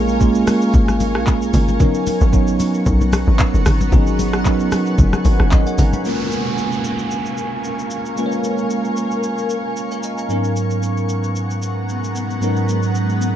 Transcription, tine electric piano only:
Already playing: G#3 A#3 C#4 F4 G4 G#4
0.20 G#3 A#3 C#4 F4 A#4
1.80 F#3 B3 C#4 D#4 A#4
2.33 F#3 B3 C#4 D#4 C#5
3.92 F#3 B3 C#4 D#4 G#4
4.45 F#3 B3 C#4 D#4 A#4
5.52 A#4 D#5
5.67 C#5 F#5
5.79 F5 A#5
5.93 F#5 B5
6.04 G#3 A#3 C#4 F4 A#4
8.16 G#3 A#3 C#4 F4 B4
8.26 C#5
9.92 A#4 F5
10.04 D#5 G#5
10.18 F5 A#5
10.28 G#2 F#3 B3 C#4 D#4 A#4
12.41 G#2 F#3 B3 C#4 D#4 A#4

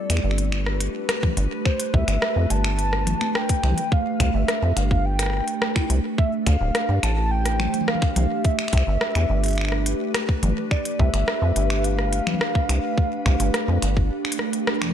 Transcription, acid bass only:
0.10 E2
0.24 G1
1.37 G1
1.94 C2
2.08 G1
2.36 F2
2.50 G1
3.64 C2
4.20 C2
4.34 G1
4.63 F2
4.77 G1
5.90 C2
6.47 D2
6.61 D1
6.89 G2
7.03 A1
8.16 C2
8.73 C2
8.87 G1
9.16 E2
9.30 G1
10.43 G1
10.99 C2
11.14 G1
11.42 F2
11.56 G1
12.69 C2
13.26 C2
13.40 G1
13.68 F2
13.82 G1

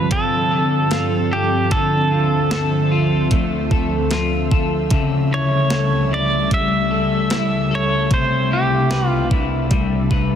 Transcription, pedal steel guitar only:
Already playing: B4
0.12 A4
1.33 G4
1.72 A4
5.34 C#5
6.14 D5
6.54 E5
7.75 C#5
8.14 C5
8.53 G4
9.08 F4

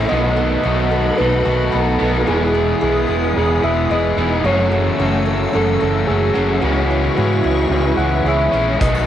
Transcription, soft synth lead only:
Already playing: E5
0.09 D#5
1.18 B4
1.74 A4
2.28 G#4
2.82 G#4
3.64 E5
3.91 D#5
4.46 C#5
5.55 A4
6.07 G#4
6.61 F#4
7.17 F#4
7.97 F#5
8.28 E5
8.81 D#5

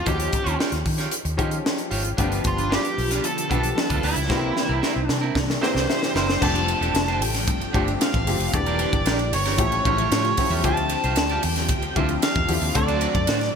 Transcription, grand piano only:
0.05 F3 C#4 D#4 F#4
0.13 G4
1.37 F3 C#4 D#4 G4
2.18 F3 A3 D4 G4
2.24 B3
3.49 F3 B3 D4 G4
4.28 E3 A#3 C4 F#4
4.36 G4
5.62 E3 A#3 C4 G4 G5
5.89 E5
6.41 F3 A3 C4 D4 G4
7.74 F3 A3 C4 D4 G4
8.27 F3 A3 C4 D4 G4
8.54 E3 G3 A#3 D4 G4
9.57 F3 A3 C#4 E4 G4
9.85 F3 A3 C#4 E4 G4
10.38 F3 A3 C#4 E4 G4
10.63 F3 C4 D4 E4 G4
11.96 F3 C4 D4 E4 G4
12.48 F3 C4 D4 E4 G4
12.74 F#3 A3 C4 D4 A4

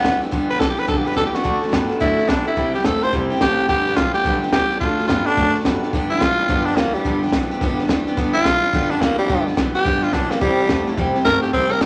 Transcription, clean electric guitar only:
0.03 G2 E3
0.32 G2 D3
0.60 G2 E3
0.88 G2 D3
1.16 G2 E3
1.44 D3 A3
1.72 D3 B3
2.01 D3 A3
2.29 D3 B3
2.57 C3 G3
2.85 C3 A3
3.13 C3 G3
3.41 C3 A3
3.69 G2 D3
3.97 G2 E3
4.25 G2 D3
4.53 G2 E3
4.82 D3 A3
5.09 D3 B3
5.37 D3 A3
5.65 D3 B3
5.93 G2 D3
6.21 G2 E3
6.48 G2 D3
6.77 G2 E3
7.05 G2 D3
7.33 G2 E3
7.61 G2 D3
7.89 G2 E3
8.17 G2 D3
8.45 G2 E3
8.73 G2 D3
9.01 G2 E3
9.29 G2 D3
9.57 G2 E3
9.85 G2 D3
10.13 G2 E3
10.41 C3 G3
10.69 C3 A3
10.97 C3 G3
11.26 C3 A3
11.54 C3 G3
11.82 C3 A3

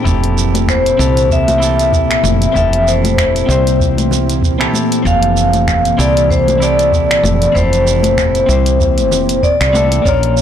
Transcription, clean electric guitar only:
0.03 C4 E4 G4
0.09 A4
0.97 C4 E4 G4 A4
1.58 C4 E4 G4
1.64 A4
2.52 C4 E4 G4
2.59 A4
3.46 C4 E4
3.50 G4 C5
4.59 C4 E4 G4 A4
5.03 E3 C4
5.07 G4 A4
5.97 C4 E4 G4 A4
6.58 C4 E4
6.62 G4 A4
7.52 C4 E4
7.57 G4 A4
8.46 C4 E4
8.51 G4 C5
9.73 C4 E4 G4 A4
10.02 A#3 C#4
10.06 F4 A#4

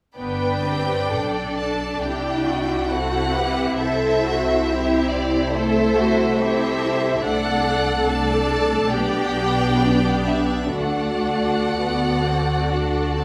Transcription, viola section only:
0.16 B3 D4
0.65 C4
1.10 D4
1.57 D4
2.89 C4 E4
3.78 C4
4.68 E4
5.54 A3
5.97 A3
6.39 C4 E4
7.25 A3 D4
8.08 A3 D4
8.91 B3 D4
10.77 A3 D4
11.75 B3
12.23 C4
12.71 D4
13.18 C4

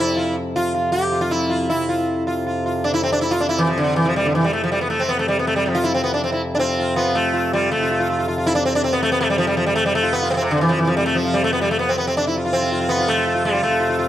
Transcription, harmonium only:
Already playing: F2 C3
1.69 F2 C3
7.73 F2 C3
13.62 F2 C3

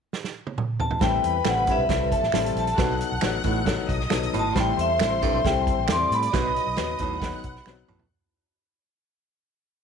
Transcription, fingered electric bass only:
1.01 A1
1.24 E2
1.45 A1
1.78 B1
1.89 C2
2.22 A1
2.33 A1
2.55 A#1
2.78 B1
3.12 B1
3.22 A1
3.44 A1
3.89 B1
4.12 B1
4.34 G#1
4.55 A1
4.78 E2
5.00 A1
5.32 B1
5.45 C2
5.78 A1
5.89 E2
6.11 A2
6.34 B1
6.67 B1
6.78 D#2
7.00 D#2
7.44 B1
7.66 B1
7.88 A#1

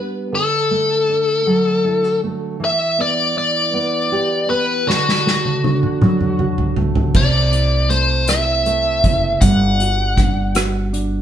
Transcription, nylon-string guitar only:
Already playing: G3 B3 D4 G4
0.32 D3
0.71 A3
1.10 D4
1.47 F#3
1.85 E4
2.04 F#4
2.24 A3
2.60 E3
2.98 B3
3.36 E4
3.74 B3
4.12 G4
4.50 B3
4.87 D3
5.26 A3
5.64 D4
6.01 F#3
6.39 F#4
6.77 A3
7.14 C3
7.52 E4
7.89 A3
8.28 E4
8.66 A3
9.04 E4
9.42 G3
9.80 F#4
10.18 D4
10.55 F#4
10.93 D4

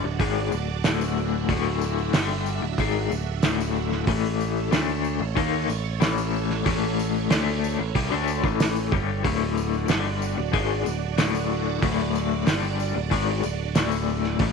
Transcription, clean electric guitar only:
0.04 D2 A2
0.19 G#2 D#3 G#3
0.52 D2 A2
0.84 D2 A2 D3
1.49 D2 A2 D3
2.13 G2 D3 G3
2.62 D2 A2
2.79 G#2 D#3 G#3
3.11 D2 A2
3.43 D2 A2 D3
4.07 A2 E3 A3
4.71 D3 A3 D4
5.20 A2 E3
5.35 D#3 A#3 D#4
5.68 A2 E3
6.00 A2 E3 A3
6.65 A2 E3 A3
7.30 D3 A3 D4
7.79 A2 E3
7.95 C3 G3
8.10 D3 A3 D4
8.44 A2 E3 A3
8.92 G2 D3 G3
9.23 D2 A2 D3
9.88 G2 D3 G3
10.37 D2 A2
10.52 G#2 D#3 G#3
10.85 D2 A2
11.18 D2 A2 D3
11.82 D2 A2 D3
12.46 G2 D3 G3
12.95 D2 A2
13.10 G#2 D#3 G#3
13.43 D2 A2
13.75 D2 A2 D3
14.40 A2 E3 A3

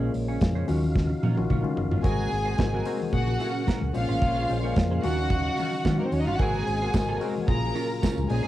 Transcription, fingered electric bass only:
0.15 A#1
0.41 F2
0.69 D#2
1.23 A#2
1.37 A#1
1.50 A#1
1.76 F#1
1.91 G1
2.04 G#1
2.32 G#1
2.59 G#1
3.13 A#1
3.82 C#2
3.95 A#1
4.09 A1
4.22 A#1
4.50 A#1
4.77 F2
5.04 D#2
5.85 D#3
6.12 D#2
6.26 G1
6.39 G#1
6.68 G#1
6.94 G#1
7.48 A#1
8.18 C#2
8.30 A#1

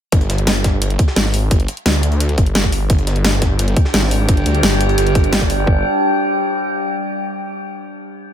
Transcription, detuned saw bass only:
0.12 G1
1.16 G#1
1.51 G1
1.86 D2
2.38 G1
2.90 G1
3.94 G#1
4.29 G1
4.46 D2
4.63 G1
4.98 G1
5.67 G1

